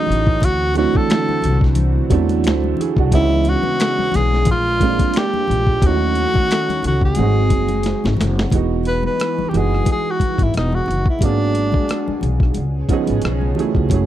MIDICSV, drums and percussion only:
0, 0, Header, 1, 2, 480
1, 0, Start_track
1, 0, Key_signature, 4, "minor"
1, 0, Tempo, 674157
1, 299, Time_signature, 4, 2, 24, 8
1, 10011, End_track
2, 0, Start_track
2, 0, Title_t, "Drums"
2, 48, Note_on_c, 9, 64, 56
2, 83, Note_on_c, 9, 42, 72
2, 119, Note_off_c, 9, 64, 0
2, 155, Note_off_c, 9, 42, 0
2, 190, Note_on_c, 9, 36, 106
2, 262, Note_off_c, 9, 36, 0
2, 288, Note_on_c, 9, 62, 34
2, 298, Note_on_c, 9, 36, 100
2, 306, Note_on_c, 9, 42, 103
2, 359, Note_off_c, 9, 62, 0
2, 369, Note_off_c, 9, 36, 0
2, 377, Note_off_c, 9, 42, 0
2, 528, Note_on_c, 9, 62, 31
2, 537, Note_on_c, 9, 42, 61
2, 599, Note_off_c, 9, 62, 0
2, 608, Note_off_c, 9, 42, 0
2, 665, Note_on_c, 9, 63, 70
2, 677, Note_on_c, 9, 36, 104
2, 736, Note_off_c, 9, 63, 0
2, 749, Note_off_c, 9, 36, 0
2, 782, Note_on_c, 9, 42, 91
2, 788, Note_on_c, 9, 26, 97
2, 794, Note_on_c, 9, 38, 117
2, 854, Note_off_c, 9, 42, 0
2, 859, Note_off_c, 9, 26, 0
2, 865, Note_off_c, 9, 38, 0
2, 917, Note_on_c, 9, 63, 63
2, 988, Note_off_c, 9, 63, 0
2, 1011, Note_on_c, 9, 62, 28
2, 1011, Note_on_c, 9, 64, 62
2, 1023, Note_on_c, 9, 42, 75
2, 1083, Note_off_c, 9, 62, 0
2, 1083, Note_off_c, 9, 64, 0
2, 1094, Note_off_c, 9, 42, 0
2, 1148, Note_on_c, 9, 36, 80
2, 1169, Note_on_c, 9, 38, 35
2, 1219, Note_off_c, 9, 36, 0
2, 1240, Note_off_c, 9, 38, 0
2, 1247, Note_on_c, 9, 42, 95
2, 1253, Note_on_c, 9, 63, 55
2, 1253, Note_on_c, 9, 64, 66
2, 1318, Note_off_c, 9, 42, 0
2, 1325, Note_off_c, 9, 63, 0
2, 1325, Note_off_c, 9, 64, 0
2, 1497, Note_on_c, 9, 36, 85
2, 1499, Note_on_c, 9, 42, 60
2, 1499, Note_on_c, 9, 62, 30
2, 1499, Note_on_c, 9, 63, 61
2, 1569, Note_off_c, 9, 36, 0
2, 1570, Note_off_c, 9, 42, 0
2, 1570, Note_off_c, 9, 62, 0
2, 1570, Note_off_c, 9, 63, 0
2, 1631, Note_on_c, 9, 63, 59
2, 1633, Note_on_c, 9, 42, 55
2, 1702, Note_off_c, 9, 63, 0
2, 1704, Note_off_c, 9, 42, 0
2, 1738, Note_on_c, 9, 42, 80
2, 1741, Note_on_c, 9, 62, 29
2, 1757, Note_on_c, 9, 26, 80
2, 1763, Note_on_c, 9, 38, 102
2, 1809, Note_off_c, 9, 42, 0
2, 1812, Note_off_c, 9, 62, 0
2, 1828, Note_off_c, 9, 26, 0
2, 1834, Note_off_c, 9, 38, 0
2, 1878, Note_on_c, 9, 63, 63
2, 1949, Note_off_c, 9, 63, 0
2, 1971, Note_on_c, 9, 62, 29
2, 1971, Note_on_c, 9, 64, 56
2, 2000, Note_on_c, 9, 42, 73
2, 2042, Note_off_c, 9, 62, 0
2, 2042, Note_off_c, 9, 64, 0
2, 2071, Note_off_c, 9, 42, 0
2, 2112, Note_on_c, 9, 36, 95
2, 2183, Note_off_c, 9, 36, 0
2, 2219, Note_on_c, 9, 36, 110
2, 2222, Note_on_c, 9, 42, 98
2, 2291, Note_off_c, 9, 36, 0
2, 2293, Note_off_c, 9, 42, 0
2, 2450, Note_on_c, 9, 62, 34
2, 2456, Note_on_c, 9, 42, 69
2, 2521, Note_off_c, 9, 62, 0
2, 2527, Note_off_c, 9, 42, 0
2, 2586, Note_on_c, 9, 63, 67
2, 2657, Note_off_c, 9, 63, 0
2, 2699, Note_on_c, 9, 62, 31
2, 2704, Note_on_c, 9, 42, 94
2, 2710, Note_on_c, 9, 26, 98
2, 2716, Note_on_c, 9, 38, 127
2, 2771, Note_off_c, 9, 62, 0
2, 2776, Note_off_c, 9, 42, 0
2, 2781, Note_off_c, 9, 26, 0
2, 2787, Note_off_c, 9, 38, 0
2, 2839, Note_on_c, 9, 63, 63
2, 2910, Note_off_c, 9, 63, 0
2, 2931, Note_on_c, 9, 62, 30
2, 2931, Note_on_c, 9, 64, 65
2, 2949, Note_on_c, 9, 42, 80
2, 2955, Note_on_c, 9, 38, 39
2, 3002, Note_off_c, 9, 62, 0
2, 3002, Note_off_c, 9, 64, 0
2, 3020, Note_off_c, 9, 42, 0
2, 3026, Note_off_c, 9, 38, 0
2, 3091, Note_on_c, 9, 38, 37
2, 3162, Note_off_c, 9, 38, 0
2, 3171, Note_on_c, 9, 42, 100
2, 3172, Note_on_c, 9, 62, 34
2, 3172, Note_on_c, 9, 63, 59
2, 3172, Note_on_c, 9, 64, 72
2, 3180, Note_on_c, 9, 36, 101
2, 3242, Note_off_c, 9, 42, 0
2, 3243, Note_off_c, 9, 62, 0
2, 3243, Note_off_c, 9, 63, 0
2, 3243, Note_off_c, 9, 64, 0
2, 3252, Note_off_c, 9, 36, 0
2, 3419, Note_on_c, 9, 62, 30
2, 3419, Note_on_c, 9, 63, 59
2, 3421, Note_on_c, 9, 36, 91
2, 3424, Note_on_c, 9, 42, 62
2, 3490, Note_off_c, 9, 62, 0
2, 3490, Note_off_c, 9, 63, 0
2, 3492, Note_off_c, 9, 36, 0
2, 3495, Note_off_c, 9, 42, 0
2, 3552, Note_on_c, 9, 63, 66
2, 3555, Note_on_c, 9, 36, 98
2, 3556, Note_on_c, 9, 42, 57
2, 3623, Note_off_c, 9, 63, 0
2, 3626, Note_off_c, 9, 36, 0
2, 3627, Note_off_c, 9, 42, 0
2, 3657, Note_on_c, 9, 42, 84
2, 3676, Note_on_c, 9, 26, 86
2, 3682, Note_on_c, 9, 38, 100
2, 3728, Note_off_c, 9, 42, 0
2, 3747, Note_off_c, 9, 26, 0
2, 3753, Note_off_c, 9, 38, 0
2, 3799, Note_on_c, 9, 63, 68
2, 3871, Note_off_c, 9, 63, 0
2, 3899, Note_on_c, 9, 64, 57
2, 3924, Note_on_c, 9, 42, 72
2, 3970, Note_off_c, 9, 64, 0
2, 3996, Note_off_c, 9, 42, 0
2, 4035, Note_on_c, 9, 36, 87
2, 4106, Note_off_c, 9, 36, 0
2, 4143, Note_on_c, 9, 36, 103
2, 4147, Note_on_c, 9, 42, 94
2, 4214, Note_off_c, 9, 36, 0
2, 4218, Note_off_c, 9, 42, 0
2, 4382, Note_on_c, 9, 42, 65
2, 4453, Note_off_c, 9, 42, 0
2, 4513, Note_on_c, 9, 63, 66
2, 4525, Note_on_c, 9, 36, 93
2, 4584, Note_off_c, 9, 63, 0
2, 4596, Note_off_c, 9, 36, 0
2, 4624, Note_on_c, 9, 62, 31
2, 4633, Note_on_c, 9, 42, 96
2, 4639, Note_on_c, 9, 26, 99
2, 4645, Note_on_c, 9, 38, 126
2, 4695, Note_off_c, 9, 62, 0
2, 4705, Note_off_c, 9, 42, 0
2, 4710, Note_off_c, 9, 26, 0
2, 4716, Note_off_c, 9, 38, 0
2, 4766, Note_on_c, 9, 63, 69
2, 4771, Note_on_c, 9, 42, 50
2, 4838, Note_off_c, 9, 63, 0
2, 4842, Note_off_c, 9, 42, 0
2, 4862, Note_on_c, 9, 62, 26
2, 4862, Note_on_c, 9, 64, 58
2, 4872, Note_on_c, 9, 42, 76
2, 4933, Note_off_c, 9, 62, 0
2, 4933, Note_off_c, 9, 64, 0
2, 4943, Note_off_c, 9, 42, 0
2, 4994, Note_on_c, 9, 36, 76
2, 5066, Note_off_c, 9, 36, 0
2, 5089, Note_on_c, 9, 42, 100
2, 5102, Note_on_c, 9, 62, 30
2, 5102, Note_on_c, 9, 63, 56
2, 5102, Note_on_c, 9, 64, 70
2, 5161, Note_off_c, 9, 42, 0
2, 5173, Note_off_c, 9, 62, 0
2, 5173, Note_off_c, 9, 63, 0
2, 5173, Note_off_c, 9, 64, 0
2, 5341, Note_on_c, 9, 36, 82
2, 5342, Note_on_c, 9, 42, 62
2, 5343, Note_on_c, 9, 63, 59
2, 5412, Note_off_c, 9, 36, 0
2, 5413, Note_off_c, 9, 42, 0
2, 5414, Note_off_c, 9, 63, 0
2, 5472, Note_on_c, 9, 42, 55
2, 5472, Note_on_c, 9, 63, 62
2, 5543, Note_off_c, 9, 42, 0
2, 5543, Note_off_c, 9, 63, 0
2, 5578, Note_on_c, 9, 42, 86
2, 5585, Note_on_c, 9, 62, 28
2, 5596, Note_on_c, 9, 38, 58
2, 5649, Note_off_c, 9, 42, 0
2, 5656, Note_off_c, 9, 62, 0
2, 5667, Note_off_c, 9, 38, 0
2, 5724, Note_on_c, 9, 63, 58
2, 5735, Note_on_c, 9, 38, 74
2, 5795, Note_off_c, 9, 63, 0
2, 5807, Note_off_c, 9, 38, 0
2, 5815, Note_on_c, 9, 62, 31
2, 5815, Note_on_c, 9, 64, 63
2, 5843, Note_on_c, 9, 38, 96
2, 5847, Note_on_c, 9, 42, 70
2, 5886, Note_off_c, 9, 62, 0
2, 5886, Note_off_c, 9, 64, 0
2, 5914, Note_off_c, 9, 38, 0
2, 5919, Note_off_c, 9, 42, 0
2, 5975, Note_on_c, 9, 38, 98
2, 6046, Note_off_c, 9, 38, 0
2, 6053, Note_on_c, 9, 62, 31
2, 6063, Note_on_c, 9, 36, 99
2, 6068, Note_on_c, 9, 42, 87
2, 6124, Note_off_c, 9, 62, 0
2, 6134, Note_off_c, 9, 36, 0
2, 6139, Note_off_c, 9, 42, 0
2, 6291, Note_on_c, 9, 62, 27
2, 6303, Note_on_c, 9, 42, 53
2, 6362, Note_off_c, 9, 62, 0
2, 6375, Note_off_c, 9, 42, 0
2, 6430, Note_on_c, 9, 63, 59
2, 6502, Note_off_c, 9, 63, 0
2, 6543, Note_on_c, 9, 62, 27
2, 6548, Note_on_c, 9, 42, 80
2, 6560, Note_on_c, 9, 37, 100
2, 6614, Note_off_c, 9, 62, 0
2, 6620, Note_off_c, 9, 42, 0
2, 6631, Note_off_c, 9, 37, 0
2, 6683, Note_on_c, 9, 63, 65
2, 6754, Note_off_c, 9, 63, 0
2, 6773, Note_on_c, 9, 62, 25
2, 6773, Note_on_c, 9, 64, 51
2, 6794, Note_on_c, 9, 42, 73
2, 6801, Note_on_c, 9, 37, 32
2, 6844, Note_off_c, 9, 62, 0
2, 6844, Note_off_c, 9, 64, 0
2, 6866, Note_off_c, 9, 42, 0
2, 6872, Note_off_c, 9, 37, 0
2, 6938, Note_on_c, 9, 37, 36
2, 7009, Note_off_c, 9, 37, 0
2, 7015, Note_on_c, 9, 62, 32
2, 7015, Note_on_c, 9, 63, 46
2, 7022, Note_on_c, 9, 42, 89
2, 7023, Note_on_c, 9, 36, 92
2, 7086, Note_off_c, 9, 62, 0
2, 7086, Note_off_c, 9, 63, 0
2, 7093, Note_off_c, 9, 42, 0
2, 7094, Note_off_c, 9, 36, 0
2, 7261, Note_on_c, 9, 63, 57
2, 7262, Note_on_c, 9, 36, 76
2, 7268, Note_on_c, 9, 42, 56
2, 7332, Note_off_c, 9, 63, 0
2, 7333, Note_off_c, 9, 36, 0
2, 7340, Note_off_c, 9, 42, 0
2, 7391, Note_on_c, 9, 63, 57
2, 7393, Note_on_c, 9, 36, 83
2, 7399, Note_on_c, 9, 42, 48
2, 7462, Note_off_c, 9, 63, 0
2, 7465, Note_off_c, 9, 36, 0
2, 7470, Note_off_c, 9, 42, 0
2, 7501, Note_on_c, 9, 62, 26
2, 7504, Note_on_c, 9, 42, 72
2, 7529, Note_on_c, 9, 37, 106
2, 7572, Note_off_c, 9, 62, 0
2, 7575, Note_off_c, 9, 42, 0
2, 7600, Note_off_c, 9, 37, 0
2, 7636, Note_on_c, 9, 63, 52
2, 7707, Note_off_c, 9, 63, 0
2, 7731, Note_on_c, 9, 62, 28
2, 7731, Note_on_c, 9, 64, 52
2, 7765, Note_on_c, 9, 42, 58
2, 7802, Note_off_c, 9, 62, 0
2, 7802, Note_off_c, 9, 64, 0
2, 7836, Note_off_c, 9, 42, 0
2, 7872, Note_on_c, 9, 36, 90
2, 7944, Note_off_c, 9, 36, 0
2, 7966, Note_on_c, 9, 62, 30
2, 7980, Note_on_c, 9, 36, 94
2, 7987, Note_on_c, 9, 42, 98
2, 8037, Note_off_c, 9, 62, 0
2, 8051, Note_off_c, 9, 36, 0
2, 8058, Note_off_c, 9, 42, 0
2, 8205, Note_on_c, 9, 62, 26
2, 8222, Note_on_c, 9, 42, 58
2, 8277, Note_off_c, 9, 62, 0
2, 8294, Note_off_c, 9, 42, 0
2, 8346, Note_on_c, 9, 63, 62
2, 8358, Note_on_c, 9, 36, 97
2, 8417, Note_off_c, 9, 63, 0
2, 8430, Note_off_c, 9, 36, 0
2, 8460, Note_on_c, 9, 62, 29
2, 8466, Note_on_c, 9, 42, 83
2, 8478, Note_on_c, 9, 37, 106
2, 8532, Note_off_c, 9, 62, 0
2, 8537, Note_off_c, 9, 42, 0
2, 8549, Note_off_c, 9, 37, 0
2, 8599, Note_on_c, 9, 63, 59
2, 8670, Note_off_c, 9, 63, 0
2, 8694, Note_on_c, 9, 64, 54
2, 8707, Note_on_c, 9, 42, 66
2, 8765, Note_off_c, 9, 64, 0
2, 8778, Note_off_c, 9, 42, 0
2, 8829, Note_on_c, 9, 36, 83
2, 8851, Note_on_c, 9, 37, 34
2, 8900, Note_off_c, 9, 36, 0
2, 8922, Note_off_c, 9, 37, 0
2, 8928, Note_on_c, 9, 62, 29
2, 8928, Note_on_c, 9, 63, 50
2, 8932, Note_on_c, 9, 42, 86
2, 9000, Note_off_c, 9, 62, 0
2, 9000, Note_off_c, 9, 63, 0
2, 9003, Note_off_c, 9, 42, 0
2, 9174, Note_on_c, 9, 63, 52
2, 9176, Note_on_c, 9, 36, 75
2, 9179, Note_on_c, 9, 42, 62
2, 9246, Note_off_c, 9, 63, 0
2, 9247, Note_off_c, 9, 36, 0
2, 9250, Note_off_c, 9, 42, 0
2, 9306, Note_on_c, 9, 63, 63
2, 9308, Note_on_c, 9, 42, 53
2, 9378, Note_off_c, 9, 63, 0
2, 9379, Note_off_c, 9, 42, 0
2, 9410, Note_on_c, 9, 42, 76
2, 9414, Note_on_c, 9, 62, 25
2, 9435, Note_on_c, 9, 37, 103
2, 9481, Note_off_c, 9, 42, 0
2, 9486, Note_off_c, 9, 62, 0
2, 9506, Note_off_c, 9, 37, 0
2, 9550, Note_on_c, 9, 63, 53
2, 9621, Note_off_c, 9, 63, 0
2, 9647, Note_on_c, 9, 62, 28
2, 9647, Note_on_c, 9, 64, 64
2, 9677, Note_on_c, 9, 42, 61
2, 9718, Note_off_c, 9, 62, 0
2, 9718, Note_off_c, 9, 64, 0
2, 9748, Note_off_c, 9, 42, 0
2, 9788, Note_on_c, 9, 36, 80
2, 9859, Note_off_c, 9, 36, 0
2, 9888, Note_on_c, 9, 62, 30
2, 9896, Note_on_c, 9, 36, 97
2, 9902, Note_on_c, 9, 42, 93
2, 9959, Note_off_c, 9, 62, 0
2, 9967, Note_off_c, 9, 36, 0
2, 9974, Note_off_c, 9, 42, 0
2, 10011, End_track
0, 0, End_of_file